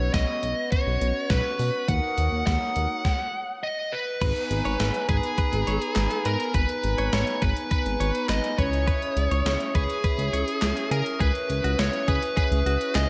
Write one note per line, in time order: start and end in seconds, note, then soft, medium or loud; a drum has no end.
0.00 0.10 B1 loud
0.00 1.85 B3 medium
0.00 1.85 C#4 medium
0.00 1.85 F#4 medium
0.00 1.85 B4 medium
0.00 1.86 B4 medium
0.00 0.13 C#5 medium
0.00 3.01 F#5 medium
0.00 1.86 C#6 medium
0.14 0.25 B1 loud
0.14 0.71 D#5 medium
0.14 kick loud
0.14 snare loud
0.14 closed hi-hat medium
0.43 0.54 B1 loud
0.43 closed hi-hat medium
0.72 1.32 C#5 loud
0.72 kick loud
0.72 closed hi-hat medium
0.87 0.98 B1 medium
1.01 1.12 B1 medium
1.01 closed hi-hat medium
1.30 1.42 B1 loud
1.30 1.90 B4 medium
1.30 kick loud
1.30 snare loud
1.30 closed hi-hat medium
1.59 1.71 B2 loud
1.59 open hi-hat medium
1.88 2.00 D#2 loud
1.88 3.03 A#3 medium
1.88 3.03 D#4 medium
1.88 3.03 F#4 medium
1.88 3.03 A#4 medium
1.88 3.04 C#5 medium
1.88 2.45 F#5 loud
1.88 3.04 D#6 medium
1.88 kick loud
1.88 closed hi-hat medium
2.18 2.29 D#2 medium
2.18 closed hi-hat medium
2.32 2.43 D#2 loud
2.47 2.58 D#2 loud
2.47 3.88 F#5 loud
2.47 kick loud
2.47 snare loud
2.47 closed hi-hat medium
2.76 2.87 D#2 loud
2.76 closed hi-hat medium
3.05 kick loud
3.05 snare medium
3.64 3.93 D#5 medium
3.92 5.09 B4 medium
4.22 4.33 G#1 loud
4.22 8.54 B3 medium
4.22 8.54 D#4 medium
4.22 8.54 G#4 medium
4.22 4.33 B4 loud
4.22 8.55 B4 medium
4.22 8.55 G#5 medium
4.22 8.55 A#5 medium
4.22 8.55 B5 medium
4.22 kick loud
4.22 closed hi-hat medium
4.22 crash loud
4.36 closed hi-hat medium
4.51 4.62 G#1 loud
4.51 closed hi-hat medium
4.65 4.77 G#1 loud
4.65 4.76 C#5 medium
4.65 closed hi-hat soft
4.80 4.91 G#1 loud
4.80 snare loud
4.80 closed hi-hat medium
4.94 closed hi-hat medium
5.09 5.20 G#1 loud
5.09 6.26 G#4 medium
5.09 5.31 B4 medium
5.09 kick medium
5.09 closed hi-hat medium
5.23 closed hi-hat medium
5.38 5.60 B4 medium
5.38 kick loud
5.38 closed hi-hat medium
5.53 5.64 G#1 loud
5.53 closed hi-hat medium
5.67 5.79 G#1 loud
5.67 5.78 C#5 medium
5.67 closed hi-hat medium
5.82 closed hi-hat medium
5.96 6.08 G#1 loud
5.96 snare loud
5.96 clap medium
5.96 closed hi-hat medium
6.10 closed hi-hat medium
6.25 6.37 G#2 loud
6.25 6.53 A#4 medium
6.25 6.37 B4 medium
6.25 closed hi-hat medium
6.40 closed hi-hat medium
6.54 6.66 G#1 loud
6.54 6.66 B4 loud
6.54 7.15 B4 medium
6.54 kick loud
6.54 closed hi-hat medium
6.69 closed hi-hat medium
6.83 6.95 G#1 loud
6.83 closed hi-hat medium
6.98 7.09 G#1 medium
6.98 7.09 C#5 medium
6.98 closed hi-hat medium
7.13 7.24 G#1 loud
7.13 7.43 C#5 medium
7.13 snare loud
7.13 closed hi-hat medium
7.27 closed hi-hat soft
7.42 7.53 G#1 loud
7.42 7.64 B4 medium
7.42 7.70 B4 medium
7.42 kick loud
7.42 closed hi-hat medium
7.56 closed hi-hat medium
7.71 7.93 B4 medium
7.71 8.25 B4 loud
7.71 kick medium
7.71 closed hi-hat medium
7.86 7.97 G#1 loud
7.86 closed hi-hat medium
8.00 8.11 G#1 loud
8.00 8.11 C#5 medium
8.00 closed hi-hat medium
8.15 closed hi-hat medium
8.29 8.40 G#1 loud
8.29 8.40 B4 medium
8.29 8.58 D#5 medium
8.29 snare loud
8.29 clap medium
8.29 closed hi-hat medium
8.44 closed hi-hat medium
8.58 8.92 C#2 loud
8.58 13.10 C#4 medium
8.58 13.10 E4 medium
8.58 13.10 G#4 medium
8.58 8.69 B4 medium
8.58 13.10 C#5 medium
8.58 9.79 C#5 loud
8.58 13.10 E5 medium
8.58 13.10 D#6 medium
8.58 kick medium
8.58 closed hi-hat medium
8.73 closed hi-hat soft
8.88 8.99 B4 loud
8.88 kick loud
8.88 closed hi-hat medium
9.02 closed hi-hat medium
9.17 9.28 C#2 loud
9.17 closed hi-hat medium
9.31 9.42 C#2 medium
9.31 9.42 C#5 medium
9.31 closed hi-hat medium
9.46 9.57 C#2 loud
9.46 snare loud
9.46 closed hi-hat medium
9.60 closed hi-hat soft
9.75 9.86 C#2 loud
9.75 10.91 G#4 medium
9.75 9.97 B4 medium
9.75 kick medium
9.75 closed hi-hat medium
9.90 closed hi-hat medium
10.04 10.26 B4 medium
10.04 kick medium
10.04 closed hi-hat medium
10.18 10.30 C#2 loud
10.18 closed hi-hat medium
10.33 10.44 C#2 loud
10.33 10.44 C#5 medium
10.33 closed hi-hat medium
10.48 closed hi-hat medium
10.62 10.73 C#2 loud
10.62 snare loud
10.62 clap medium
10.62 closed hi-hat medium
10.77 closed hi-hat medium
10.91 11.03 C#3 loud
10.91 11.03 G#4 medium
10.91 11.20 A#4 medium
10.91 closed hi-hat medium
11.06 closed hi-hat medium
11.20 11.32 C#2 loud
11.20 11.31 G#4 loud
11.20 11.81 B4 loud
11.20 kick loud
11.20 closed hi-hat medium
11.35 closed hi-hat medium
11.50 11.61 C#2 loud
11.50 closed hi-hat medium
11.64 11.75 C#2 loud
11.64 11.75 F#4 medium
11.64 closed hi-hat medium
11.79 11.90 C#2 loud
11.79 12.06 C#5 loud
11.79 snare loud
11.79 closed hi-hat medium
11.93 closed hi-hat soft
12.08 12.19 C#2 loud
12.08 12.30 G#4 medium
12.08 12.36 B4 medium
12.08 kick medium
12.08 closed hi-hat medium
12.23 closed hi-hat medium
12.37 12.59 G#4 medium
12.37 12.97 B4 loud
12.37 kick loud
12.37 closed hi-hat medium
12.52 12.63 C#2 loud
12.52 closed hi-hat medium
12.66 12.77 C#2 loud
12.66 12.77 F#4 medium
12.66 closed hi-hat medium
12.81 closed hi-hat medium
12.95 13.07 C#2 loud
12.95 13.06 G#4 medium
12.95 13.10 D#5 loud
12.95 snare loud
12.95 clap medium
12.95 closed hi-hat medium